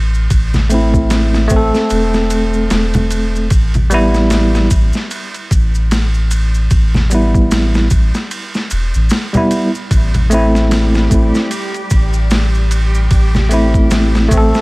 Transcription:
Already playing: A1
0.14 maracas
0.30 A1, kick, ride, maracas
0.54 snare, low conga, maracas
0.70 A3 C4, ride, maracas
0.74 E4
0.94 kick, maracas
1.10 snare, ride, maracas
1.34 snare, maracas
1.48 A1 A3 C4, kick, ride, maracas
1.56 A4
1.74 snare, maracas
1.90 E1, ride, maracas
2.14 snare, maracas
2.30 ride, maracas
2.54 maracas
2.70 E1, snare, ride, maracas
2.94 ride, low conga, maracas
3.11 ride, maracas
3.35 maracas
3.50 A1, kick, ride, maracas
3.74 ride, low conga, maracas
3.90 G3 B3, ride, maracas
3.94 E4
4.14 snare, maracas
4.30 snare, ride, maracas
4.55 snare, maracas
4.71 A1, kick, ride, maracas
4.93 snare, maracas
5.11 ride, maracas
5.34 ride, maracas
5.51 A1, kick, ride, maracas
5.75 maracas
5.91 snare, ride, maracas
6.14 maracas
6.31 ride, maracas
6.55 maracas
6.71 A1, kick, ride, maracas
6.94 snare, low conga, maracas
7.10 G3 B3, ride, maracas
7.14 E4
7.34 kick, maracas
7.51 snare, ride, maracas
7.74 snare, maracas
7.91 A1, kick, ride, maracas
8.14 snare, maracas
8.31 ride, maracas
8.54 snare, maracas
8.71 E1, ride, maracas
8.94 A1, maracas
9.10 snare, ride, maracas
9.33 G3 B3, ride, low conga, maracas
9.37 E4
9.51 ride, maracas
9.75 maracas
9.91 A1 G3 G4, kick, ride, maracas
10.14 ride, low conga, maracas
10.30 A3 C4, ride, maracas
10.34 E4
10.55 snare, maracas
10.71 snare, ride, maracas
10.94 snare, maracas
11.10 A1 A3 C4, kick, ride, maracas
11.14 E4
11.35 snare, maracas
11.51 ride, maracas
11.74 ride, maracas
11.90 A1, kick, ride, maracas
12.13 maracas
12.30 snare, ride, maracas
12.54 maracas
12.71 ride, maracas
12.94 maracas
13.11 A1, kick, ride, maracas
13.35 snare, low conga, maracas
13.49 A3 C4, ride, maracas
13.54 E4
13.74 kick, maracas
13.91 snare, ride, maracas
14.15 snare, maracas
14.28 A1 A3, kick, ride, maracas
14.33 C4
14.37 A4
14.54 snare, maracas

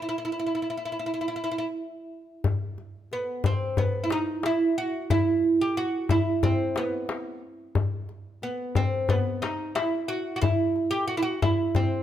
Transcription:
0.02 E4
0.09 E4
0.18 E4
0.25 E4
0.32 E4
0.39 E4
0.47 E4
0.55 E4
0.62 E4
0.70 E4
0.77 E4
0.85 E4
0.92 E4
0.99 E4
1.06 E4
1.14 E4
1.21 E4
1.28 E4
1.36 E4
1.44 E4
1.51 E4
1.58 E4
2.44 darbuka dum
2.78 darbuka ka
3.12 B3, darbuka ka
3.44 C4, darbuka dum
3.77 B3, darbuka dum
4.04 E4
4.10 D#4, darbuka tek
4.43 E4, darbuka tek
4.78 F#4
5.10 E4, darbuka dum
5.44 darbuka ka
5.61 G4
5.77 F#4, darbuka ka
6.09 E4, darbuka dum
6.43 C4, darbuka dum
6.76 B3, darbuka tek
7.09 darbuka tek
7.75 darbuka dum
8.09 darbuka ka
8.42 B3, darbuka ka
8.75 C4, darbuka dum
9.09 B3, darbuka dum
9.42 D#4, darbuka tek
9.75 E4, darbuka tek
10.08 F#4
10.36 F#4
10.42 E4, darbuka dum
10.76 darbuka ka
10.91 G4, darbuka ka
11.08 F#4
11.17 E4
11.23 F#4
11.42 E4, darbuka dum
11.75 C4, darbuka dum

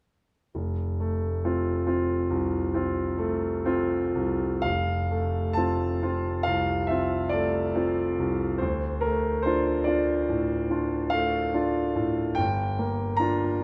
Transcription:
0.55 F1
1.00 A3
1.45 C4 F4
1.87 C4 F4
2.30 C2
2.74 C4 F4
3.18 A3
3.65 C4 F4
4.15 C2
4.62 F1 F5
5.11 A3
5.53 C4 F4 A5
6.03 C4 F4
6.43 C2 F5
6.87 C4 F4 E5
7.29 A3 D5
7.75 C4 F4
8.19 C2
8.58 D2 C5
9.01 A3 A#4
9.42 D4 F4 C5
9.84 D4 F4 D5
10.29 A2
10.71 D4 F4
11.10 A3 F5
11.54 D4 F4
11.96 A2
12.35 G1 G5
12.79 A#3
13.17 D4 F4 A#5

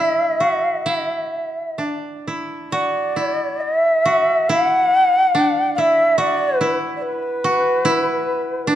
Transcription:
Already playing: D4 E4 E5
0.40 F#4
0.86 E4
1.78 D4
2.27 E4
2.72 F#4 D5
3.16 E4
3.60 E5
4.05 F#4
4.49 E4 F#5
5.35 D4
5.74 E4 F#5
5.79 E5
6.18 F#4 D5
6.57 E4 B4
6.96 D5
7.02 B4
7.44 F#4
7.85 E4
8.67 D4

